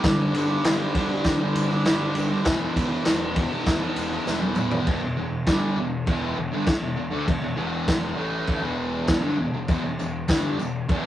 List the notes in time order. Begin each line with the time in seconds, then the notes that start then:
0.01 G1 G2 D3 G3, kick, snare, ride, tambourine
0.31 G1 G2 D3 G3, ride, tambourine
0.46 G3
0.50 D3
0.63 G1 G2 D3 G3, snare, ride, tambourine
0.94 G1 G2 D3 G3, kick, ride
1.09 D3 G3
1.24 G1, kick, snare, ride, tambourine
1.39 D3 G3
1.55 G1, ride, tambourine
1.69 D3 G3
1.84 G1 G2 D3 G3, snare, ride, tambourine
2.14 G1 G2 D3 G3, ride, tambourine
2.29 D3 G3
2.43 E1 E2 B2 E3, kick, snare, ride
2.74 E1 E2 B2 E3, kick, ride, tambourine
2.89 E3, tambourine
2.93 B2
3.04 E1 E2 B2 E3, snare, ride, tambourine
3.33 E2 B2, kick, ride, tambourine
3.38 E3
3.50 B2 E3, tambourine
3.66 E1, kick, snare, ride, tambourine
3.80 B2 E3, tambourine
3.96 E1, ride, tambourine
4.10 B2 E3
4.25 E1 E2 B2, snare, tambourine
4.29 E3
4.42 high tom
4.55 E2 B2, mid tom, tambourine
4.59 E3
4.71 B2 E3, floor tom, tambourine
4.87 E1 E2 B2, kick, crash
5.02 E1 E2 B2
5.17 E1 E2 B2
5.46 G1 G2 D3 G3, kick, snare, crash
5.76 E1 E2 B2
6.07 E1 E2 B2 E3, kick, crash
6.37 E1 E2 B2
6.52 G1 G2 D3
6.67 muted picked electric bass stroke, muted distorted electric guitar stroke, kick, snare, crash
6.81 E1 E2 B2
6.97 E1 E2 B2
7.11 D2 D3 A3
7.27 E1 E2 B2, kick, crash
7.42 E1 E2 B2
7.56 E1 E2 B2 E3
7.88 kick, snare, crash
8.16 A1 A2 E3 A3
8.47 kick, crash
8.62 E1 E2 B2 E3
9.07 kick, snare, crash
9.22 G1 G2 D3
9.39 E1 E2 B2
9.53 E1 E2 B2
9.68 E1 E2 B2, kick, tambourine, crash
9.84 E1 E2 B2
9.99 E1 E2 B2, tambourine
10.28 G1 G2 D3 G3, kick, snare, tambourine, crash
10.58 E1 E2 B2, tambourine
10.89 E1 E2 B2 E3, kick, crash